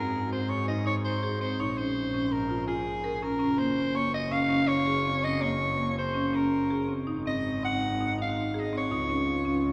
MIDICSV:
0, 0, Header, 1, 5, 480
1, 0, Start_track
1, 0, Tempo, 365854
1, 2091, Time_signature, 5, 2, 24, 8
1, 12758, End_track
2, 0, Start_track
2, 0, Title_t, "Soprano saxophone"
2, 0, Program_c, 0, 64
2, 0, Note_on_c, 0, 70, 72
2, 382, Note_off_c, 0, 70, 0
2, 425, Note_on_c, 0, 72, 68
2, 647, Note_on_c, 0, 73, 70
2, 667, Note_off_c, 0, 72, 0
2, 881, Note_off_c, 0, 73, 0
2, 889, Note_on_c, 0, 75, 73
2, 1113, Note_off_c, 0, 75, 0
2, 1136, Note_on_c, 0, 73, 73
2, 1243, Note_off_c, 0, 73, 0
2, 1371, Note_on_c, 0, 72, 83
2, 1818, Note_off_c, 0, 72, 0
2, 1848, Note_on_c, 0, 72, 79
2, 2096, Note_on_c, 0, 73, 80
2, 2115, Note_off_c, 0, 72, 0
2, 2251, Note_off_c, 0, 73, 0
2, 2251, Note_on_c, 0, 73, 62
2, 2329, Note_on_c, 0, 72, 81
2, 2349, Note_off_c, 0, 73, 0
2, 3043, Note_on_c, 0, 70, 79
2, 3063, Note_off_c, 0, 72, 0
2, 3497, Note_off_c, 0, 70, 0
2, 3505, Note_on_c, 0, 68, 76
2, 4234, Note_on_c, 0, 70, 89
2, 4254, Note_off_c, 0, 68, 0
2, 4698, Note_on_c, 0, 72, 94
2, 4718, Note_off_c, 0, 70, 0
2, 5193, Note_on_c, 0, 73, 87
2, 5213, Note_off_c, 0, 72, 0
2, 5428, Note_off_c, 0, 73, 0
2, 5434, Note_on_c, 0, 75, 87
2, 5666, Note_on_c, 0, 77, 94
2, 5686, Note_off_c, 0, 75, 0
2, 6133, Note_on_c, 0, 73, 100
2, 6153, Note_off_c, 0, 77, 0
2, 6871, Note_on_c, 0, 75, 86
2, 6891, Note_off_c, 0, 73, 0
2, 7100, Note_on_c, 0, 73, 87
2, 7120, Note_off_c, 0, 75, 0
2, 7824, Note_off_c, 0, 73, 0
2, 7850, Note_on_c, 0, 72, 73
2, 8333, Note_on_c, 0, 70, 68
2, 8352, Note_off_c, 0, 72, 0
2, 9050, Note_off_c, 0, 70, 0
2, 9542, Note_on_c, 0, 75, 81
2, 9988, Note_off_c, 0, 75, 0
2, 10030, Note_on_c, 0, 78, 97
2, 10696, Note_off_c, 0, 78, 0
2, 10781, Note_on_c, 0, 77, 75
2, 11273, Note_on_c, 0, 75, 71
2, 11293, Note_off_c, 0, 77, 0
2, 11484, Note_off_c, 0, 75, 0
2, 11509, Note_on_c, 0, 73, 76
2, 12758, Note_off_c, 0, 73, 0
2, 12758, End_track
3, 0, Start_track
3, 0, Title_t, "French horn"
3, 0, Program_c, 1, 60
3, 9278, Note_on_c, 1, 63, 72
3, 11697, Note_on_c, 1, 65, 94
3, 11717, Note_off_c, 1, 63, 0
3, 12758, Note_off_c, 1, 65, 0
3, 12758, End_track
4, 0, Start_track
4, 0, Title_t, "Marimba"
4, 0, Program_c, 2, 12
4, 0, Note_on_c, 2, 60, 62
4, 344, Note_off_c, 2, 60, 0
4, 428, Note_on_c, 2, 60, 62
4, 826, Note_off_c, 2, 60, 0
4, 903, Note_on_c, 2, 63, 73
4, 1101, Note_off_c, 2, 63, 0
4, 1127, Note_on_c, 2, 63, 80
4, 1535, Note_off_c, 2, 63, 0
4, 1614, Note_on_c, 2, 68, 66
4, 1816, Note_off_c, 2, 68, 0
4, 1849, Note_on_c, 2, 60, 60
4, 2052, Note_off_c, 2, 60, 0
4, 2099, Note_on_c, 2, 63, 78
4, 2298, Note_off_c, 2, 63, 0
4, 2334, Note_on_c, 2, 61, 67
4, 2736, Note_off_c, 2, 61, 0
4, 2810, Note_on_c, 2, 61, 63
4, 3210, Note_off_c, 2, 61, 0
4, 3276, Note_on_c, 2, 65, 72
4, 3481, Note_off_c, 2, 65, 0
4, 3517, Note_on_c, 2, 65, 78
4, 3922, Note_off_c, 2, 65, 0
4, 3988, Note_on_c, 2, 70, 74
4, 4192, Note_off_c, 2, 70, 0
4, 4228, Note_on_c, 2, 61, 65
4, 4431, Note_off_c, 2, 61, 0
4, 4452, Note_on_c, 2, 61, 80
4, 4661, Note_off_c, 2, 61, 0
4, 4698, Note_on_c, 2, 58, 71
4, 5105, Note_off_c, 2, 58, 0
4, 5180, Note_on_c, 2, 58, 64
4, 5585, Note_off_c, 2, 58, 0
4, 5658, Note_on_c, 2, 61, 77
4, 5862, Note_off_c, 2, 61, 0
4, 5897, Note_on_c, 2, 61, 78
4, 6304, Note_off_c, 2, 61, 0
4, 6380, Note_on_c, 2, 68, 70
4, 6583, Note_off_c, 2, 68, 0
4, 6627, Note_on_c, 2, 60, 56
4, 6827, Note_off_c, 2, 60, 0
4, 6854, Note_on_c, 2, 61, 76
4, 7059, Note_off_c, 2, 61, 0
4, 7089, Note_on_c, 2, 58, 65
4, 7500, Note_off_c, 2, 58, 0
4, 7574, Note_on_c, 2, 58, 60
4, 7987, Note_off_c, 2, 58, 0
4, 8054, Note_on_c, 2, 61, 73
4, 8265, Note_off_c, 2, 61, 0
4, 8307, Note_on_c, 2, 61, 75
4, 8719, Note_off_c, 2, 61, 0
4, 8797, Note_on_c, 2, 68, 67
4, 9001, Note_off_c, 2, 68, 0
4, 9033, Note_on_c, 2, 60, 53
4, 9241, Note_off_c, 2, 60, 0
4, 9276, Note_on_c, 2, 63, 76
4, 9485, Note_off_c, 2, 63, 0
4, 9524, Note_on_c, 2, 60, 66
4, 9937, Note_off_c, 2, 60, 0
4, 10014, Note_on_c, 2, 60, 60
4, 10422, Note_off_c, 2, 60, 0
4, 10504, Note_on_c, 2, 63, 72
4, 10704, Note_off_c, 2, 63, 0
4, 10740, Note_on_c, 2, 63, 78
4, 11143, Note_off_c, 2, 63, 0
4, 11208, Note_on_c, 2, 68, 74
4, 11413, Note_off_c, 2, 68, 0
4, 11452, Note_on_c, 2, 60, 64
4, 11654, Note_off_c, 2, 60, 0
4, 11696, Note_on_c, 2, 63, 79
4, 11896, Note_off_c, 2, 63, 0
4, 11927, Note_on_c, 2, 61, 72
4, 12330, Note_off_c, 2, 61, 0
4, 12397, Note_on_c, 2, 61, 67
4, 12758, Note_off_c, 2, 61, 0
4, 12758, End_track
5, 0, Start_track
5, 0, Title_t, "Double bass"
5, 0, Program_c, 3, 43
5, 0, Note_on_c, 3, 44, 75
5, 2084, Note_on_c, 3, 34, 74
5, 2104, Note_off_c, 3, 44, 0
5, 4464, Note_on_c, 3, 30, 75
5, 4484, Note_off_c, 3, 34, 0
5, 9278, Note_on_c, 3, 32, 71
5, 9298, Note_off_c, 3, 30, 0
5, 11707, Note_on_c, 3, 37, 71
5, 11727, Note_off_c, 3, 32, 0
5, 12758, Note_off_c, 3, 37, 0
5, 12758, End_track
0, 0, End_of_file